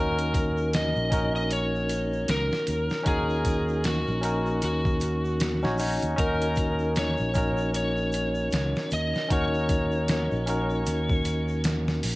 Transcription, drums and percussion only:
0.18 closed hi-hat soft
0.18 shaker soft
0.34 kick medium
0.34 closed hi-hat medium
0.34 shaker medium
0.57 shaker soft
0.73 snare loud
0.73 closed hi-hat medium
0.73 shaker soft
0.96 shaker soft
1.12 kick loud
1.12 closed hi-hat medium
1.12 shaker loud
1.36 shaker soft
1.51 closed hi-hat medium
1.51 shaker medium
1.75 shaker soft
1.89 closed hi-hat medium
1.89 shaker loud
2.13 shaker soft
2.28 snare loud
2.28 closed hi-hat medium
2.28 shaker medium
2.52 snare medium
2.52 shaker soft
2.67 closed hi-hat medium
2.67 shaker medium
2.90 snare soft
2.90 shaker soft
3.06 kick loud
3.06 closed hi-hat medium
3.06 shaker medium
3.30 shaker soft
3.45 kick medium
3.45 closed hi-hat medium
3.45 shaker medium
3.69 shaker soft
3.84 snare loud
3.84 closed hi-hat medium
3.84 shaker medium
4.07 shaker soft
4.23 closed hi-hat medium
4.23 shaker medium
4.46 shaker soft
4.62 closed hi-hat medium
4.62 shaker medium
4.85 kick loud
4.85 shaker soft
5.00 closed hi-hat medium
5.00 shaker medium
5.25 shaker soft
5.40 snare loud
5.40 closed hi-hat medium
5.40 shaker medium
5.63 snare soft
5.63 shaker soft
5.78 open hi-hat medium
5.78 shaker medium
6.02 closed hi-hat soft
6.02 shaker soft
6.18 kick loud
6.18 closed hi-hat medium
6.18 shaker soft
6.41 closed hi-hat soft
6.41 shaker soft
6.55 kick medium
6.55 closed hi-hat medium
6.55 shaker medium
6.79 shaker soft
6.95 snare loud
6.95 closed hi-hat medium
6.95 shaker soft
7.17 shaker soft
7.34 kick loud
7.34 closed hi-hat medium
7.34 shaker medium
7.57 shaker soft
7.74 closed hi-hat medium
7.74 shaker soft
7.97 shaker soft
8.12 closed hi-hat medium
8.12 shaker medium
8.35 shaker soft
8.51 snare loud
8.51 closed hi-hat medium
8.51 shaker soft
8.76 snare medium
8.76 shaker soft
8.91 closed hi-hat medium
8.91 shaker medium
9.14 snare soft
9.14 shaker soft
9.30 kick loud
9.30 closed hi-hat medium
9.30 shaker soft
9.54 shaker soft
9.69 kick medium
9.69 closed hi-hat medium
9.69 shaker medium
9.92 shaker soft
10.08 snare loud
10.08 closed hi-hat medium
10.08 shaker soft
10.31 shaker soft
10.47 closed hi-hat medium
10.47 shaker medium
10.70 shaker soft
10.86 closed hi-hat medium
10.86 shaker soft
11.09 kick loud
11.09 shaker soft
11.25 closed hi-hat medium
11.25 shaker loud
11.48 shaker soft
11.64 snare loud
11.64 closed hi-hat medium
11.64 shaker medium
11.88 snare medium
11.88 shaker soft
12.03 open hi-hat medium
12.03 shaker medium

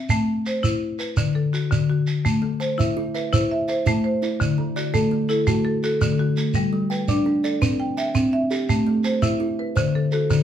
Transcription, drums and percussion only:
0.09 shekere medium
0.46 shekere medium
0.64 shekere medium
1.00 shekere medium
1.17 shekere medium
1.54 shekere medium
1.72 shekere medium
2.07 shekere medium
2.26 shekere medium
2.61 shekere medium
2.80 shekere medium
3.15 shekere medium
3.33 shekere medium
3.68 shekere soft
3.86 shekere medium
4.23 shekere medium
4.41 shekere medium
4.77 shekere medium
4.94 shekere medium
5.29 shekere medium
5.47 shekere medium
5.83 shekere soft
6.01 shekere medium
6.37 shekere medium
6.54 shekere medium
6.91 shekere medium
7.08 shekere medium
7.44 shekere medium
7.62 shekere medium
7.98 shekere soft
8.15 shekere medium
8.51 shekere medium
8.69 shekere medium
9.04 shekere medium
9.22 shekere medium
9.77 shekere medium
10.12 shekere medium
10.30 shekere medium

